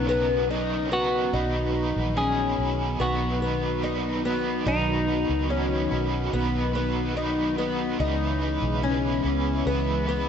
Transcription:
Already playing: fingered electric bass B1, analog synth pad C#3 F#3 B3 C#4 D#4
0.07 twelve-string acoustic guitar B3, overdriven electric guitar C#4 D#4 A#4
0.12 overdriven electric guitar F#3
0.49 overdriven electric guitar B2 D#3 F#3 C#4 D#4 A#4
0.90 twelve-string acoustic guitar B3, overdriven electric guitar C#4 D#4 A#4, clean electric guitar F#4
0.94 overdriven electric guitar F#3
1.32 fingered electric bass B1, overdriven electric guitar B2 D#3 F#3 B3 D#4 B4, analog synth pad D#3 F#3 B3 D#4 F#4
1.74 overdriven electric guitar B3 D#4 B4
1.79 overdriven electric guitar F#3
1.96 fingered electric bass A#1
2.17 overdriven electric guitar D#3 F#3 B3 D#4 B4, twelve-string acoustic guitar C#4, clean electric guitar G#4
2.57 fingered electric bass B1, overdriven electric guitar B3 D#4 B4
2.61 overdriven electric guitar F#3
2.99 fingered electric bass B1, overdriven electric guitar F#3 B3 D#4, clean electric guitar F#4
3.04 overdriven electric guitar B4
3.40 overdriven electric guitar B3 D#4 B4
3.45 overdriven electric guitar F#3
3.82 overdriven electric guitar B2 D#3 F#3 B3 D#4 B4
4.24 overdriven electric guitar B3 D#4 B4
4.28 overdriven electric guitar F#3
4.65 fingered electric bass B1, overdriven electric guitar B2 D#3 F#3 B3 D#4 B4, clean electric guitar D#4
5.06 overdriven electric guitar B3 D#4 B4
5.10 overdriven electric guitar F#3
5.29 fingered electric bass C#2
5.49 overdriven electric guitar B2 D#3 F#3 B3 D#4 B4, twelve-string acoustic guitar C#4
5.90 fingered electric bass B1, overdriven electric guitar B3 D#4 B4
5.94 overdriven electric guitar F#3
6.32 fingered electric bass B1, overdriven electric guitar F#3 B3 D#4
6.36 overdriven electric guitar B4
6.73 overdriven electric guitar B3 D#4 B4
6.78 overdriven electric guitar F#3
7.15 overdriven electric guitar B2 D#3 F#3 B3 D#4 B4
7.57 overdriven electric guitar B3 D#4 B4
7.61 overdriven electric guitar F#3
7.99 fingered electric bass C#2, overdriven electric guitar C#3 G#3 B3 E4 B4, analog synth pad C#3 E3 G#3 B3 C#4, twelve-string acoustic guitar D#4
8.40 overdriven electric guitar E4 B4
8.44 overdriven electric guitar B3
8.62 fingered electric bass B1
8.82 overdriven electric guitar C#3 G#3 B3 E4 B4, twelve-string acoustic guitar C#4
9.23 fingered electric bass C#2, overdriven electric guitar E4 B4
9.27 overdriven electric guitar B3
9.65 fingered electric bass C#2, overdriven electric guitar G#3 B3 E4
9.69 overdriven electric guitar B4
10.06 overdriven electric guitar E4 B4
10.11 overdriven electric guitar B3

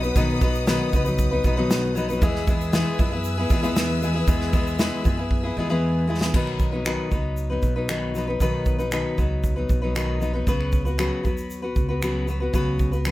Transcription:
Already playing: upright bass B1, string section B4 F#5 D#6
0.03 steel-string acoustic guitar F#3 B3 D#4 B4, shaker
0.15 upright bass B1, steel-string acoustic guitar B2 D#3 F#3 B3 D#4 B4, kick, shaker
0.41 steel-string acoustic guitar F#3 B3 D#4 B4, kick, shaker
0.55 shaker
0.67 steel-string acoustic guitar B2 D#3 F#3 B3 D#4 B4, snare, shaker
0.92 upright bass C#2, steel-string acoustic guitar F#3 B3 D#4 B4, kick, shaker
1.05 steel-string acoustic guitar F#3 B3 D#4 B4, shaker
1.18 kick, shaker
1.31 steel-string acoustic guitar F#3 B3 D#4 B4
1.44 upright bass B1, steel-string acoustic guitar F#3 B3 D#4 B4, kick, shaker
1.57 steel-string acoustic guitar B2 D#3 F#3 B3 D#4 B4
1.70 snare, shaker
1.95 steel-string acoustic guitar F#3 B3 D#4 B4, shaker
2.08 steel-string acoustic guitar F#3 B3 D#4 B4, shaker
2.21 upright bass E2, steel-string acoustic guitar E3 G#3 B3 E4 G#4, string section B4 G#5 E6, kick, shaker
2.35 snare
2.47 steel-string acoustic guitar G#3 B3 E4 G#4, kick, shaker
2.61 shaker
2.73 steel-string acoustic guitar E3 G#3 B3 E4 G#4, snare, shaker
2.98 upright bass F#2, steel-string acoustic guitar G#3 B3 E4 G#4, kick, shaker
3.11 steel-string acoustic guitar B3 E4 G#4
3.24 shaker
3.38 steel-string acoustic guitar B3 E4 G#4
3.50 upright bass E2, steel-string acoustic guitar G#3 B3 E4 G#4, kick, shaker
3.63 steel-string acoustic guitar E3 G#3 B3 E4 G#4, shaker
3.76 snare, shaker
4.01 steel-string acoustic guitar G#3 B3 E4 G#4, shaker
4.14 steel-string acoustic guitar B3 E4 G#4
4.27 upright bass E2, steel-string acoustic guitar E3 G#3 B3 E4 G#4, kick, shaker
4.41 snare
4.53 steel-string acoustic guitar G#3 B3 E4 G#4, kick, shaker
4.67 shaker
4.78 steel-string acoustic guitar E3 G#3 B3 E4 G#4, snare, shaker
5.04 upright bass F#2, steel-string acoustic guitar G#3 B3 E4 G#4, kick, shaker
5.17 steel-string acoustic guitar B3 E4 G#4
5.31 kick
5.43 steel-string acoustic guitar B3 E4 G#4
5.57 upright bass E2, steel-string acoustic guitar G#3 B3 E4 G#4
5.70 steel-string acoustic guitar E3 G#3 B3 E4 G#4
6.07 steel-string acoustic guitar G#3 B3 E4 G#4
6.21 steel-string acoustic guitar B3 E4 G#4, snare
6.34 upright bass B1, steel-string acoustic guitar B2 D#3 F#3 B3 D#4 B4, kick, crash
6.47 finger snap
6.59 kick, shaker
6.72 steel-string acoustic guitar F#3 B3 D#4 B4
6.85 steel-string acoustic guitar B2 D#3 F#3 B3 D#4 B4, finger snap, shaker
7.11 upright bass C#2, steel-string acoustic guitar F#3 B3 D#4 B4, kick, shaker
7.37 shaker
7.50 steel-string acoustic guitar F#3 B3 D#4 B4
7.62 upright bass B1, kick, shaker
7.76 steel-string acoustic guitar F#3 B3 D#4 B4
7.88 steel-string acoustic guitar B2 D#3 F#3 B3 D#4 B4, finger snap, shaker
8.15 steel-string acoustic guitar F#3 B3 D#4 B4, shaker
8.27 steel-string acoustic guitar F#3 B3 D#4 B4
8.40 upright bass B1, steel-string acoustic guitar B2 D#3 F#3 B3 D#4 B4, kick, shaker
8.66 kick, shaker
8.78 steel-string acoustic guitar F#3 B3 D#4 B4, shaker
8.91 steel-string acoustic guitar B2 D#3 F#3 B3 D#4 B4, finger snap, shaker
9.17 upright bass C#2, steel-string acoustic guitar F#3 B3 D#4 B4, kick, shaker
9.44 kick, shaker
9.56 steel-string acoustic guitar F#3 B3 D#4 B4
9.69 upright bass B1, kick, shaker
9.82 steel-string acoustic guitar F#3 B3 D#4 B4
9.95 steel-string acoustic guitar B2 D#3 F#3 B3 D#4 B4, finger snap, shaker
10.20 steel-string acoustic guitar F#3 B3 D#4 B4, shaker
10.33 steel-string acoustic guitar F#3 B3 D#4 B4
10.47 upright bass C#2, steel-string acoustic guitar C#3 F#3 B3 F#4 B4, kick, shaker
10.61 finger snap
10.72 kick, shaker
10.85 steel-string acoustic guitar B3 F#4 B4, shaker
10.98 steel-string acoustic guitar C#3 F#3 B3 F#4 B4, finger snap, shaker
11.23 upright bass D#2, steel-string acoustic guitar F#3 B3 F#4 B4, kick, shaker
11.37 shaker
11.50 shaker
11.62 steel-string acoustic guitar B3 F#4 B4
11.76 upright bass C#2, kick, shaker
11.89 steel-string acoustic guitar B3 F#4 B4
12.02 steel-string acoustic guitar C#3 F#3 B3 F#4 B4, finger snap, shaker
12.27 steel-string acoustic guitar F#3 B3 F#4 B4, shaker
12.40 steel-string acoustic guitar B3 F#4 B4
12.53 upright bass C#2, steel-string acoustic guitar C#3 F#3 B3 F#4 B4, kick, shaker
12.79 kick, shaker
12.92 steel-string acoustic guitar B3 F#4 B4, shaker
13.05 steel-string acoustic guitar C#3 F#3 B3 F#4 B4, finger snap, shaker

